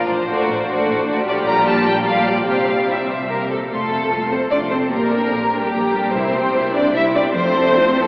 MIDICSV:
0, 0, Header, 1, 6, 480
1, 0, Start_track
1, 0, Key_signature, -1, "major"
1, 0, Tempo, 396563
1, 107, Time_signature, 3, 2, 24, 8
1, 2507, Tempo, 407056
1, 7787, Tempo, 398142
1, 9623, End_track
2, 0, Start_track
2, 0, Title_t, "Violin section"
2, 0, Program_c, 0, 48
2, 113, Note_on_c, 0, 72, 50
2, 1288, Note_off_c, 0, 72, 0
2, 1553, Note_on_c, 0, 74, 64
2, 1647, Note_off_c, 0, 74, 0
2, 1781, Note_on_c, 0, 82, 69
2, 2018, Note_off_c, 0, 82, 0
2, 2023, Note_on_c, 0, 81, 66
2, 2260, Note_off_c, 0, 81, 0
2, 2269, Note_on_c, 0, 79, 69
2, 2365, Note_off_c, 0, 79, 0
2, 2491, Note_on_c, 0, 77, 65
2, 2732, Note_off_c, 0, 77, 0
2, 2746, Note_on_c, 0, 74, 53
2, 2980, Note_on_c, 0, 77, 53
2, 2986, Note_off_c, 0, 74, 0
2, 3457, Note_off_c, 0, 77, 0
2, 3467, Note_on_c, 0, 76, 41
2, 3956, Note_off_c, 0, 76, 0
2, 4442, Note_on_c, 0, 84, 30
2, 4663, Note_off_c, 0, 84, 0
2, 4682, Note_on_c, 0, 81, 27
2, 4919, Note_off_c, 0, 81, 0
2, 4922, Note_on_c, 0, 84, 28
2, 5154, Note_on_c, 0, 81, 31
2, 5157, Note_off_c, 0, 84, 0
2, 5391, Note_off_c, 0, 81, 0
2, 5400, Note_on_c, 0, 84, 30
2, 5619, Note_off_c, 0, 84, 0
2, 5631, Note_on_c, 0, 81, 29
2, 5868, Note_on_c, 0, 82, 31
2, 5871, Note_off_c, 0, 81, 0
2, 6091, Note_off_c, 0, 82, 0
2, 6109, Note_on_c, 0, 79, 31
2, 6343, Note_on_c, 0, 82, 30
2, 6346, Note_off_c, 0, 79, 0
2, 6579, Note_on_c, 0, 79, 32
2, 6581, Note_off_c, 0, 82, 0
2, 6819, Note_off_c, 0, 79, 0
2, 6823, Note_on_c, 0, 82, 33
2, 7049, Note_off_c, 0, 82, 0
2, 7061, Note_on_c, 0, 79, 32
2, 7300, Note_on_c, 0, 76, 33
2, 7308, Note_off_c, 0, 79, 0
2, 7528, Note_off_c, 0, 76, 0
2, 7553, Note_on_c, 0, 79, 36
2, 7784, Note_on_c, 0, 76, 34
2, 7788, Note_off_c, 0, 79, 0
2, 8021, Note_on_c, 0, 79, 38
2, 8027, Note_off_c, 0, 76, 0
2, 8266, Note_off_c, 0, 79, 0
2, 8271, Note_on_c, 0, 76, 41
2, 8493, Note_off_c, 0, 76, 0
2, 8507, Note_on_c, 0, 79, 37
2, 8736, Note_on_c, 0, 84, 43
2, 8748, Note_off_c, 0, 79, 0
2, 8965, Note_off_c, 0, 84, 0
2, 8980, Note_on_c, 0, 81, 42
2, 9219, Note_on_c, 0, 84, 39
2, 9224, Note_off_c, 0, 81, 0
2, 9459, Note_on_c, 0, 81, 45
2, 9463, Note_off_c, 0, 84, 0
2, 9623, Note_off_c, 0, 81, 0
2, 9623, End_track
3, 0, Start_track
3, 0, Title_t, "Violin section"
3, 0, Program_c, 1, 48
3, 346, Note_on_c, 1, 66, 40
3, 351, Note_on_c, 1, 74, 38
3, 821, Note_off_c, 1, 66, 0
3, 823, Note_off_c, 1, 74, 0
3, 839, Note_on_c, 1, 66, 37
3, 843, Note_on_c, 1, 74, 40
3, 1293, Note_off_c, 1, 66, 0
3, 1296, Note_off_c, 1, 74, 0
3, 1308, Note_on_c, 1, 66, 44
3, 1310, Note_on_c, 1, 74, 43
3, 1540, Note_off_c, 1, 74, 0
3, 1542, Note_off_c, 1, 66, 0
3, 1553, Note_on_c, 1, 67, 46
3, 1554, Note_on_c, 1, 74, 47
3, 2461, Note_off_c, 1, 67, 0
3, 2462, Note_off_c, 1, 74, 0
3, 2508, Note_on_c, 1, 74, 42
3, 2512, Note_on_c, 1, 67, 42
3, 2971, Note_off_c, 1, 67, 0
3, 2977, Note_off_c, 1, 74, 0
3, 2986, Note_on_c, 1, 67, 34
3, 2988, Note_on_c, 1, 72, 37
3, 3460, Note_off_c, 1, 67, 0
3, 3461, Note_off_c, 1, 72, 0
3, 3464, Note_on_c, 1, 64, 42
3, 3559, Note_off_c, 1, 64, 0
3, 3709, Note_on_c, 1, 72, 40
3, 3803, Note_off_c, 1, 72, 0
3, 3954, Note_on_c, 1, 70, 42
3, 4194, Note_off_c, 1, 70, 0
3, 4201, Note_on_c, 1, 69, 38
3, 4295, Note_off_c, 1, 69, 0
3, 4440, Note_on_c, 1, 69, 48
3, 5107, Note_off_c, 1, 69, 0
3, 5147, Note_on_c, 1, 72, 45
3, 5242, Note_off_c, 1, 72, 0
3, 5380, Note_on_c, 1, 74, 52
3, 5475, Note_off_c, 1, 74, 0
3, 5613, Note_on_c, 1, 72, 51
3, 5708, Note_off_c, 1, 72, 0
3, 5864, Note_on_c, 1, 70, 50
3, 6681, Note_off_c, 1, 70, 0
3, 6702, Note_on_c, 1, 67, 46
3, 7298, Note_off_c, 1, 67, 0
3, 7314, Note_on_c, 1, 72, 55
3, 8027, Note_on_c, 1, 74, 54
3, 8030, Note_off_c, 1, 72, 0
3, 8264, Note_off_c, 1, 74, 0
3, 8274, Note_on_c, 1, 76, 59
3, 8369, Note_off_c, 1, 76, 0
3, 8523, Note_on_c, 1, 74, 58
3, 8616, Note_off_c, 1, 74, 0
3, 8752, Note_on_c, 1, 72, 69
3, 9572, Note_off_c, 1, 72, 0
3, 9585, Note_on_c, 1, 69, 70
3, 9623, Note_off_c, 1, 69, 0
3, 9623, End_track
4, 0, Start_track
4, 0, Title_t, "Viola section"
4, 0, Program_c, 2, 48
4, 342, Note_on_c, 2, 62, 35
4, 344, Note_on_c, 2, 57, 39
4, 811, Note_off_c, 2, 62, 0
4, 816, Note_off_c, 2, 57, 0
4, 825, Note_on_c, 2, 62, 39
4, 831, Note_on_c, 2, 57, 40
4, 1281, Note_off_c, 2, 62, 0
4, 1284, Note_off_c, 2, 57, 0
4, 1296, Note_on_c, 2, 62, 41
4, 1299, Note_on_c, 2, 57, 39
4, 1535, Note_on_c, 2, 55, 52
4, 1536, Note_off_c, 2, 62, 0
4, 1536, Note_on_c, 2, 65, 50
4, 1537, Note_off_c, 2, 57, 0
4, 2453, Note_off_c, 2, 55, 0
4, 2453, Note_off_c, 2, 65, 0
4, 2503, Note_on_c, 2, 55, 43
4, 2503, Note_on_c, 2, 65, 43
4, 2969, Note_off_c, 2, 55, 0
4, 2974, Note_off_c, 2, 65, 0
4, 2983, Note_on_c, 2, 55, 38
4, 2985, Note_on_c, 2, 60, 40
4, 3445, Note_off_c, 2, 55, 0
4, 3445, Note_off_c, 2, 60, 0
4, 3459, Note_on_c, 2, 55, 33
4, 3460, Note_on_c, 2, 60, 33
4, 4183, Note_off_c, 2, 55, 0
4, 4183, Note_off_c, 2, 60, 0
4, 4435, Note_on_c, 2, 57, 33
4, 4441, Note_on_c, 2, 65, 30
4, 4660, Note_off_c, 2, 57, 0
4, 4663, Note_off_c, 2, 65, 0
4, 4668, Note_on_c, 2, 69, 28
4, 4670, Note_on_c, 2, 60, 29
4, 4908, Note_on_c, 2, 57, 27
4, 4911, Note_on_c, 2, 65, 28
4, 4912, Note_off_c, 2, 69, 0
4, 4913, Note_off_c, 2, 60, 0
4, 5144, Note_on_c, 2, 60, 29
4, 5147, Note_on_c, 2, 69, 30
4, 5150, Note_off_c, 2, 57, 0
4, 5151, Note_off_c, 2, 65, 0
4, 5382, Note_on_c, 2, 57, 29
4, 5383, Note_on_c, 2, 65, 30
4, 5386, Note_off_c, 2, 60, 0
4, 5388, Note_off_c, 2, 69, 0
4, 5609, Note_off_c, 2, 57, 0
4, 5609, Note_off_c, 2, 65, 0
4, 5621, Note_on_c, 2, 69, 31
4, 5623, Note_on_c, 2, 60, 30
4, 5854, Note_on_c, 2, 58, 34
4, 5857, Note_on_c, 2, 67, 33
4, 5866, Note_off_c, 2, 60, 0
4, 5866, Note_off_c, 2, 69, 0
4, 6084, Note_off_c, 2, 58, 0
4, 6085, Note_off_c, 2, 67, 0
4, 6097, Note_on_c, 2, 70, 31
4, 6098, Note_on_c, 2, 62, 31
4, 6333, Note_on_c, 2, 67, 29
4, 6340, Note_off_c, 2, 62, 0
4, 6340, Note_off_c, 2, 70, 0
4, 6340, Note_on_c, 2, 58, 30
4, 6575, Note_on_c, 2, 70, 32
4, 6576, Note_off_c, 2, 67, 0
4, 6578, Note_on_c, 2, 62, 31
4, 6579, Note_off_c, 2, 58, 0
4, 6817, Note_off_c, 2, 70, 0
4, 6818, Note_off_c, 2, 62, 0
4, 6825, Note_on_c, 2, 58, 31
4, 6829, Note_on_c, 2, 67, 34
4, 7049, Note_off_c, 2, 58, 0
4, 7052, Note_off_c, 2, 67, 0
4, 7059, Note_on_c, 2, 62, 34
4, 7059, Note_on_c, 2, 70, 35
4, 7300, Note_on_c, 2, 55, 39
4, 7300, Note_on_c, 2, 64, 38
4, 7307, Note_off_c, 2, 70, 0
4, 7308, Note_off_c, 2, 62, 0
4, 7528, Note_off_c, 2, 55, 0
4, 7528, Note_off_c, 2, 64, 0
4, 7538, Note_on_c, 2, 60, 35
4, 7542, Note_on_c, 2, 67, 34
4, 7781, Note_off_c, 2, 60, 0
4, 7783, Note_off_c, 2, 67, 0
4, 7792, Note_on_c, 2, 64, 35
4, 7797, Note_on_c, 2, 55, 36
4, 8031, Note_off_c, 2, 64, 0
4, 8033, Note_off_c, 2, 55, 0
4, 8035, Note_on_c, 2, 60, 33
4, 8035, Note_on_c, 2, 67, 36
4, 8270, Note_on_c, 2, 64, 35
4, 8272, Note_off_c, 2, 60, 0
4, 8273, Note_off_c, 2, 67, 0
4, 8274, Note_on_c, 2, 55, 36
4, 8493, Note_off_c, 2, 64, 0
4, 8495, Note_off_c, 2, 55, 0
4, 8508, Note_on_c, 2, 60, 37
4, 8512, Note_on_c, 2, 67, 38
4, 8749, Note_off_c, 2, 60, 0
4, 8749, Note_on_c, 2, 57, 41
4, 8749, Note_on_c, 2, 65, 44
4, 8751, Note_off_c, 2, 67, 0
4, 8972, Note_off_c, 2, 57, 0
4, 8972, Note_off_c, 2, 65, 0
4, 8990, Note_on_c, 2, 60, 39
4, 8991, Note_on_c, 2, 69, 39
4, 9226, Note_on_c, 2, 57, 39
4, 9228, Note_on_c, 2, 65, 39
4, 9229, Note_off_c, 2, 60, 0
4, 9229, Note_off_c, 2, 69, 0
4, 9466, Note_off_c, 2, 57, 0
4, 9467, Note_off_c, 2, 65, 0
4, 9471, Note_on_c, 2, 60, 42
4, 9472, Note_on_c, 2, 69, 42
4, 9623, Note_off_c, 2, 60, 0
4, 9623, Note_off_c, 2, 69, 0
4, 9623, End_track
5, 0, Start_track
5, 0, Title_t, "Cello section"
5, 0, Program_c, 3, 48
5, 104, Note_on_c, 3, 45, 49
5, 510, Note_off_c, 3, 45, 0
5, 595, Note_on_c, 3, 45, 51
5, 995, Note_off_c, 3, 45, 0
5, 1067, Note_on_c, 3, 45, 55
5, 1468, Note_off_c, 3, 45, 0
5, 1545, Note_on_c, 3, 46, 48
5, 2937, Note_off_c, 3, 46, 0
5, 2988, Note_on_c, 3, 48, 34
5, 4179, Note_off_c, 3, 48, 0
5, 4432, Note_on_c, 3, 57, 38
5, 5103, Note_off_c, 3, 57, 0
5, 5155, Note_on_c, 3, 60, 42
5, 5249, Note_off_c, 3, 60, 0
5, 5393, Note_on_c, 3, 62, 41
5, 5488, Note_off_c, 3, 62, 0
5, 5630, Note_on_c, 3, 60, 38
5, 5865, Note_off_c, 3, 60, 0
5, 5869, Note_on_c, 3, 58, 40
5, 6695, Note_on_c, 3, 55, 45
5, 6700, Note_off_c, 3, 58, 0
5, 7303, Note_on_c, 3, 60, 48
5, 7307, Note_off_c, 3, 55, 0
5, 8023, Note_on_c, 3, 62, 53
5, 8024, Note_off_c, 3, 60, 0
5, 8263, Note_on_c, 3, 64, 57
5, 8267, Note_off_c, 3, 62, 0
5, 8505, Note_on_c, 3, 62, 50
5, 8507, Note_off_c, 3, 64, 0
5, 8747, Note_off_c, 3, 62, 0
5, 8749, Note_on_c, 3, 60, 53
5, 9570, Note_off_c, 3, 60, 0
5, 9623, End_track
6, 0, Start_track
6, 0, Title_t, "Double bass section"
6, 0, Program_c, 4, 48
6, 103, Note_on_c, 4, 33, 49
6, 510, Note_off_c, 4, 33, 0
6, 584, Note_on_c, 4, 33, 52
6, 989, Note_off_c, 4, 33, 0
6, 1064, Note_on_c, 4, 33, 58
6, 1466, Note_off_c, 4, 33, 0
6, 1545, Note_on_c, 4, 34, 53
6, 2937, Note_off_c, 4, 34, 0
6, 2986, Note_on_c, 4, 36, 39
6, 4178, Note_off_c, 4, 36, 0
6, 4444, Note_on_c, 4, 29, 42
6, 4841, Note_off_c, 4, 29, 0
6, 4922, Note_on_c, 4, 29, 40
6, 5317, Note_off_c, 4, 29, 0
6, 5388, Note_on_c, 4, 29, 43
6, 5790, Note_off_c, 4, 29, 0
6, 5869, Note_on_c, 4, 34, 43
6, 6268, Note_off_c, 4, 34, 0
6, 6348, Note_on_c, 4, 34, 45
6, 6743, Note_off_c, 4, 34, 0
6, 6822, Note_on_c, 4, 34, 50
6, 7231, Note_off_c, 4, 34, 0
6, 7308, Note_on_c, 4, 36, 48
6, 7709, Note_off_c, 4, 36, 0
6, 7776, Note_on_c, 4, 36, 47
6, 8184, Note_off_c, 4, 36, 0
6, 8264, Note_on_c, 4, 36, 51
6, 8668, Note_off_c, 4, 36, 0
6, 8751, Note_on_c, 4, 41, 58
6, 9151, Note_off_c, 4, 41, 0
6, 9232, Note_on_c, 4, 41, 57
6, 9623, Note_off_c, 4, 41, 0
6, 9623, End_track
0, 0, End_of_file